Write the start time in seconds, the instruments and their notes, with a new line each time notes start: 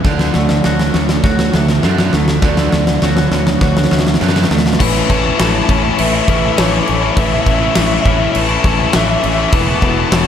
0.03 fingered electric bass D2, analog synth pad D3 F#4 A4, distorted electric guitar D3 A3 D4, clean electric guitar D3, vibraphone D5, kick, snare
0.19 snare
0.34 fingered electric bass D2, distorted electric guitar D3 A3, clean electric guitar A3, snare
0.49 snare
0.64 fingered electric bass D2, distorted electric guitar D3 A3, clean electric guitar F#4, vibraphone C#5, snare
0.79 snare
0.93 fingered electric bass D2, distorted electric guitar D3 A3, clean electric guitar C#4, snare
1.09 snare
1.23 fingered electric bass D2, distorted electric guitar D3 A3, clean electric guitar F#4, vibraphone C#5, kick, snare
1.39 snare
1.53 fingered electric bass D2, distorted electric guitar D3 A3, vibraphone E5, snare
1.68 snare
1.82 fingered electric bass F#2, distorted electric guitar D3 A3 D4, clean electric guitar D3, snare
1.98 snare
2.12 fingered electric bass D2, distorted electric guitar D3 A3, clean electric guitar A3, snare
2.28 snare
2.42 fingered electric bass D2, distorted electric guitar D3 A3 D4, clean electric guitar D3, analog synth pad B4, vibraphone D5, kick, snare
2.57 snare
2.72 fingered electric bass D2, distorted electric guitar D3 A3, clean electric guitar A3, snare
2.87 snare
3.02 fingered electric bass D2, distorted electric guitar D3 A3, clean electric guitar F#4, vibraphone C#5, snare
3.17 snare
3.31 fingered electric bass D2, distorted electric guitar D3 A3, clean electric guitar C#4, snare
3.47 snare
3.61 fingered electric bass D2, distorted electric guitar D3 A3, clean electric guitar F#4, vibraphone C#5, kick, snare
3.77 snare
3.84 snare
3.91 fingered electric bass D2, distorted electric guitar D3 A3, clean electric guitar C#4, vibraphone E5, snare
3.99 snare
4.07 snare
4.14 snare
4.20 fingered electric bass F#2, distorted electric guitar D3 A3 D4, clean electric guitar D3, snare
4.29 snare
4.36 snare
4.44 snare
4.51 fingered electric bass D2, distorted electric guitar D3 A3, clean electric guitar A3, snare
4.58 snare
4.66 snare
4.73 snare
4.79 fingered electric bass A1, distorted electric guitar A2 E3 A3 C#4 E4, clean electric guitar A2, analog synth pad C#4 E4 A4 E5, vibraphone B4, kick, crash
5.10 fingered electric bass A1, distorted electric guitar E3 A3 C#4 E4, clean electric guitar E3, lead electric guitar A5, kick, crash
5.17 lead electric guitar A5
5.24 distorted electric guitar A3 C#4 E4, lead electric guitar A5
5.33 lead electric guitar A5
5.38 fingered electric bass A1, distorted electric guitar A2 E3 A3 C#4 E4, clean electric guitar E3, vibraphone C#5, lead electric guitar A5, snare, crash
5.48 lead electric guitar A5
5.57 lead electric guitar A5
5.63 distorted electric guitar E3, lead electric guitar A5
5.69 fingered electric bass A1, distorted electric guitar A3 C#4 E4, clean electric guitar C#4, lead electric guitar A5, kick, crash
5.79 distorted electric guitar E4, lead electric guitar A5
5.83 distorted electric guitar A3 C#4, lead electric guitar A5
5.94 lead electric guitar A5
5.98 fingered electric bass A1, clean electric guitar A3, vibraphone B4, lead electric guitar E5, crash
6.07 lead electric guitar E5
6.12 distorted electric guitar A3 C#4 E4, lead electric guitar E5
6.21 lead electric guitar E5
6.27 fingered electric bass A1, distorted electric guitar E3 A3 C#4 E4, clean electric guitar C#4, lead electric guitar E5, kick, crash
6.37 lead electric guitar E5
6.42 distorted electric guitar A3 C#4 E4, lead electric guitar E5
6.52 lead electric guitar E5
6.57 fingered electric bass A1, distorted electric guitar A2 E3 A3 C#4 E4, clean electric guitar E3, lead electric guitar C#5, vibraphone C#5, snare, crash
6.65 lead electric guitar C#5
6.73 lead electric guitar C#5
6.80 lead electric guitar C#5
6.87 fingered electric bass A1, clean electric guitar A3, lead electric guitar C#5, crash
6.96 lead electric guitar C#5
7.01 distorted electric guitar A3 C#4 E4, lead electric guitar C#5
7.11 distorted electric guitar A2, lead electric guitar C#5
7.15 fingered electric bass A1, clean electric guitar A2, distorted electric guitar E3 A3 C#4 E4, vibraphone B4, analog synth pad B4, lead electric guitar E5, kick, crash
7.26 lead electric guitar E5
7.33 lead electric guitar E5
7.42 distorted electric guitar E3, lead electric guitar E5
7.46 fingered electric bass A1, clean electric guitar E3, distorted electric guitar A3 C#4 E4, lead electric guitar E5, kick, crash
7.55 lead electric guitar E5
7.60 distorted electric guitar A3 C#4 E4, lead electric guitar E5
7.71 lead electric guitar E5
7.75 fingered electric bass A1, distorted electric guitar A2 E3 A3 C#4 E4, clean electric guitar E3, vibraphone C#5, lead electric guitar E5, snare, crash
7.86 lead electric guitar E5
7.93 lead electric guitar E5
8.01 lead electric guitar E5
8.05 fingered electric bass A1, distorted electric guitar E3 A3 C#4 E4, clean electric guitar C#4, lead electric guitar E5, kick, crash
8.16 distorted electric guitar C#4 E4, lead electric guitar E5
8.22 distorted electric guitar A3, lead electric guitar E5
8.32 fingered electric bass A1, vibraphone B4, lead electric guitar E5, crash
8.36 clean electric guitar A3, lead electric guitar A5
8.44 lead electric guitar A5
8.49 distorted electric guitar A3 C#4 E4, lead electric guitar A5
8.59 lead electric guitar A5
8.64 fingered electric bass A1, distorted electric guitar E3 A3 C#4 E4, clean electric guitar C#4, lead electric guitar A5, kick, crash
8.74 lead electric guitar A5
8.79 distorted electric guitar A3 C#4 E4, lead electric guitar A5
8.87 lead electric guitar A5
8.93 fingered electric bass A1, distorted electric guitar A2 E3 A3 C#4 E4, clean electric guitar E3, vibraphone C#5, lead electric guitar E5, snare, crash
9.03 lead electric guitar E5
9.10 lead electric guitar E5
9.18 lead electric guitar E5
9.23 fingered electric bass A1, clean electric guitar A3, lead electric guitar E5, crash
9.33 distorted electric guitar E4, lead electric guitar E5
9.38 distorted electric guitar A3 C#4, lead electric guitar E5
9.51 fingered electric bass E1, clean electric guitar E2, distorted electric guitar E3 A3 B3 E4, analog synth pad A4 A5, vibraphone B4, lead electric guitar A5, kick, crash
9.62 lead electric guitar A5
9.69 lead electric guitar A5
9.77 lead electric guitar A5
9.82 fingered electric bass E1, clean electric guitar B2, distorted electric guitar E3 A3 B3 E4, lead electric guitar A5, kick, crash
9.91 lead electric guitar A5
9.96 distorted electric guitar A3 B3 E4, lead electric guitar A5
10.07 lead electric guitar A5
10.11 fingered electric bass E1, distorted electric guitar E3 A3 B3 E4, clean electric guitar E3, vibraphone C#5, lead electric guitar A5, snare, crash
10.23 lead electric guitar A5